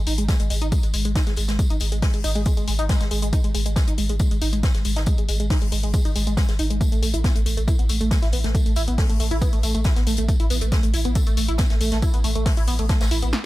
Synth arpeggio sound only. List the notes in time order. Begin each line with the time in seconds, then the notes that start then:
0.07 D#4
0.18 G#3
0.29 G#3
0.40 G#3
0.50 G#3
0.62 D#4
0.72 G#3
0.83 G#3
0.94 G#3
1.05 G#3
1.15 D#4
1.27 G#3
1.37 G#3
1.49 G#3
1.59 G#3
1.70 D#4
1.81 G#3
1.92 G#3
2.02 G#3
2.14 G#3
2.24 D#4
2.35 G#3
2.46 G#3
2.57 G#3
2.68 G#3
2.79 D#4
2.89 G#3
3.01 G#3
3.11 G#3
3.22 G#3
3.33 D#4
3.44 G#3
3.55 G#3
3.66 G#3
3.76 G#3
3.88 D#4
3.98 G#3
4.09 G#3
4.20 G#3
4.31 G#3
4.42 D#4
4.53 G#3
4.63 G#3
4.75 G#3
4.85 G#3
4.96 D#4
5.07 G#3
5.18 G#3
5.29 G#3
5.40 G#3
5.50 D#4
5.62 G#3
5.72 G#3
5.83 G#3
5.94 G#3
6.05 D#4
6.16 G#3
6.27 G#3
6.37 G#3
6.49 G#3
6.59 D#4
6.70 G#3
6.81 A3
6.92 A3
7.02 A3
7.14 E4
7.24 B3
7.35 A3
7.46 A3
7.57 A3
7.68 E4
7.79 B3
7.89 A3
8.01 A3
8.11 A3
8.22 E4
8.33 B3
8.44 A3
8.55 A3
8.66 A3
8.76 E4
8.88 B3
8.98 A3
9.09 A3
9.20 A3
9.31 E4
9.42 B3
9.53 A3
9.63 A3
9.75 A3
9.85 E4
9.96 B3
10.07 A3
10.18 A3
10.29 A3
10.40 E4
10.50 B3
10.62 A3
10.72 A3
10.83 A3
10.94 E4
11.05 B3
11.16 A3
11.27 A3
11.37 A3
11.48 E4
11.59 B3
11.70 A3
11.81 A3
11.92 A3
12.02 E4
12.14 B3
12.24 A3
12.35 A3
12.46 A3
12.57 E4
12.68 B3
12.79 A3
12.89 A3
13.01 A3
13.11 E4
13.22 B3